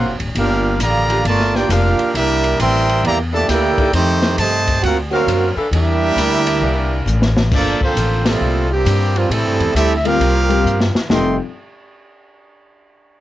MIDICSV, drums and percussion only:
0, 0, Header, 1, 2, 480
1, 0, Start_track
1, 0, Key_signature, -1, "major"
1, 0, Tempo, 447427
1, 384, Time_signature, 4, 2, 24, 8
1, 14165, End_track
2, 0, Start_track
2, 0, Title_t, "Drums"
2, 213, Note_on_c, 9, 51, 52
2, 320, Note_off_c, 9, 51, 0
2, 380, Note_on_c, 9, 51, 77
2, 487, Note_off_c, 9, 51, 0
2, 857, Note_on_c, 9, 44, 65
2, 857, Note_on_c, 9, 51, 80
2, 965, Note_off_c, 9, 44, 0
2, 965, Note_off_c, 9, 51, 0
2, 1178, Note_on_c, 9, 51, 55
2, 1286, Note_off_c, 9, 51, 0
2, 1343, Note_on_c, 9, 51, 73
2, 1451, Note_off_c, 9, 51, 0
2, 1501, Note_on_c, 9, 38, 35
2, 1608, Note_off_c, 9, 38, 0
2, 1666, Note_on_c, 9, 38, 45
2, 1774, Note_off_c, 9, 38, 0
2, 1825, Note_on_c, 9, 44, 66
2, 1825, Note_on_c, 9, 51, 85
2, 1933, Note_off_c, 9, 44, 0
2, 1933, Note_off_c, 9, 51, 0
2, 2134, Note_on_c, 9, 51, 52
2, 2242, Note_off_c, 9, 51, 0
2, 2306, Note_on_c, 9, 51, 88
2, 2413, Note_off_c, 9, 51, 0
2, 2615, Note_on_c, 9, 51, 54
2, 2723, Note_off_c, 9, 51, 0
2, 2784, Note_on_c, 9, 44, 68
2, 2784, Note_on_c, 9, 51, 79
2, 2891, Note_off_c, 9, 44, 0
2, 2891, Note_off_c, 9, 51, 0
2, 3103, Note_on_c, 9, 51, 59
2, 3210, Note_off_c, 9, 51, 0
2, 3266, Note_on_c, 9, 51, 66
2, 3373, Note_off_c, 9, 51, 0
2, 3741, Note_on_c, 9, 38, 42
2, 3742, Note_on_c, 9, 44, 75
2, 3742, Note_on_c, 9, 51, 82
2, 3848, Note_off_c, 9, 38, 0
2, 3849, Note_off_c, 9, 44, 0
2, 3849, Note_off_c, 9, 51, 0
2, 4053, Note_on_c, 9, 36, 68
2, 4054, Note_on_c, 9, 51, 50
2, 4161, Note_off_c, 9, 36, 0
2, 4162, Note_off_c, 9, 51, 0
2, 4220, Note_on_c, 9, 51, 82
2, 4327, Note_off_c, 9, 51, 0
2, 4531, Note_on_c, 9, 38, 66
2, 4532, Note_on_c, 9, 51, 54
2, 4638, Note_off_c, 9, 38, 0
2, 4639, Note_off_c, 9, 51, 0
2, 4699, Note_on_c, 9, 44, 73
2, 4699, Note_on_c, 9, 51, 81
2, 4806, Note_off_c, 9, 44, 0
2, 4806, Note_off_c, 9, 51, 0
2, 5013, Note_on_c, 9, 36, 56
2, 5015, Note_on_c, 9, 51, 64
2, 5120, Note_off_c, 9, 36, 0
2, 5122, Note_off_c, 9, 51, 0
2, 5185, Note_on_c, 9, 51, 70
2, 5293, Note_off_c, 9, 51, 0
2, 5667, Note_on_c, 9, 44, 72
2, 5667, Note_on_c, 9, 51, 82
2, 5775, Note_off_c, 9, 44, 0
2, 5775, Note_off_c, 9, 51, 0
2, 6145, Note_on_c, 9, 51, 79
2, 6252, Note_off_c, 9, 51, 0
2, 6627, Note_on_c, 9, 44, 53
2, 6627, Note_on_c, 9, 51, 82
2, 6735, Note_off_c, 9, 44, 0
2, 6735, Note_off_c, 9, 51, 0
2, 6937, Note_on_c, 9, 51, 84
2, 7045, Note_off_c, 9, 51, 0
2, 7588, Note_on_c, 9, 44, 65
2, 7695, Note_off_c, 9, 44, 0
2, 7745, Note_on_c, 9, 38, 75
2, 7852, Note_off_c, 9, 38, 0
2, 7903, Note_on_c, 9, 38, 99
2, 8011, Note_off_c, 9, 38, 0
2, 8063, Note_on_c, 9, 38, 47
2, 8063, Note_on_c, 9, 49, 85
2, 8064, Note_on_c, 9, 36, 95
2, 8170, Note_off_c, 9, 38, 0
2, 8170, Note_off_c, 9, 49, 0
2, 8172, Note_off_c, 9, 36, 0
2, 8377, Note_on_c, 9, 36, 63
2, 8484, Note_off_c, 9, 36, 0
2, 8547, Note_on_c, 9, 44, 72
2, 8547, Note_on_c, 9, 51, 74
2, 8654, Note_off_c, 9, 44, 0
2, 8654, Note_off_c, 9, 51, 0
2, 8856, Note_on_c, 9, 38, 98
2, 8857, Note_on_c, 9, 51, 80
2, 8963, Note_off_c, 9, 38, 0
2, 8964, Note_off_c, 9, 51, 0
2, 9508, Note_on_c, 9, 44, 67
2, 9508, Note_on_c, 9, 51, 90
2, 9615, Note_off_c, 9, 44, 0
2, 9615, Note_off_c, 9, 51, 0
2, 9825, Note_on_c, 9, 51, 47
2, 9932, Note_off_c, 9, 51, 0
2, 9993, Note_on_c, 9, 51, 83
2, 10100, Note_off_c, 9, 51, 0
2, 10303, Note_on_c, 9, 51, 52
2, 10410, Note_off_c, 9, 51, 0
2, 10473, Note_on_c, 9, 44, 71
2, 10473, Note_on_c, 9, 51, 79
2, 10580, Note_off_c, 9, 44, 0
2, 10580, Note_off_c, 9, 51, 0
2, 10783, Note_on_c, 9, 51, 62
2, 10890, Note_off_c, 9, 51, 0
2, 10951, Note_on_c, 9, 51, 65
2, 11059, Note_off_c, 9, 51, 0
2, 11267, Note_on_c, 9, 51, 48
2, 11374, Note_off_c, 9, 51, 0
2, 11439, Note_on_c, 9, 44, 54
2, 11547, Note_off_c, 9, 44, 0
2, 11591, Note_on_c, 9, 38, 73
2, 11698, Note_off_c, 9, 38, 0
2, 11750, Note_on_c, 9, 38, 86
2, 11857, Note_off_c, 9, 38, 0
2, 11909, Note_on_c, 9, 38, 118
2, 12016, Note_off_c, 9, 38, 0
2, 14165, End_track
0, 0, End_of_file